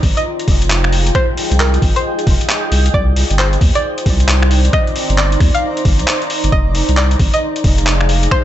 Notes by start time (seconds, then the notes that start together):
Already playing: D#4 F4 G#4 C5 G5 A#5
0.03 G#1, kick, open hi-hat
0.17 D#5, closed hi-hat
0.37 D#5, closed hi-hat
0.48 F1, kick, open hi-hat
0.62 closed hi-hat
0.70 clap
0.84 finger snap
0.93 open hi-hat
1.07 closed hi-hat
1.15 C5, finger snap, kick
1.37 open hi-hat
1.51 C2, closed hi-hat
1.60 A#4, clap
1.74 closed hi-hat
1.82 G#1, kick, open hi-hat
1.96 C5, closed hi-hat
2.19 closed hi-hat
2.27 F1, kick, open hi-hat
2.41 closed hi-hat
2.49 clap
2.71 C2 D#4, open hi-hat
2.86 C5, closed hi-hat
2.94 C2 D5, kick
3.16 open hi-hat
3.30 G1 D5, closed hi-hat
3.39 C5, clap
3.46 A#5
3.53 closed hi-hat
3.61 D#2, kick, open hi-hat
3.75 D5, closed hi-hat
3.98 closed hi-hat
4.06 C2, kick, open hi-hat
4.20 closed hi-hat
4.28 clap
4.43 finger snap
4.51 open hi-hat
4.65 closed hi-hat
4.73 D#5, finger snap, kick
4.87 closed hi-hat
4.96 open hi-hat
5.10 G1, closed hi-hat
5.18 D5, clap
5.32 closed hi-hat
5.40 D#2, finger snap, kick, open hi-hat
5.54 F5, closed hi-hat
5.77 closed hi-hat
5.85 G1, kick, open hi-hat
5.99 C2, closed hi-hat
6.08 clap
6.22 closed hi-hat
6.30 open hi-hat
6.44 G1, closed hi-hat
6.52 F1 D#5, kick
6.70 G#4
6.75 open hi-hat
6.80 F5
6.89 C2, closed hi-hat
6.97 D5, clap
7.11 closed hi-hat
7.19 G#1, kick, open hi-hat
7.34 D#5, closed hi-hat
7.56 closed hi-hat
7.62 F1 G5, kick, open hi-hat
7.78 closed hi-hat
7.87 clap
8.01 finger snap
8.09 open hi-hat
8.23 closed hi-hat
8.31 C5, finger snap, kick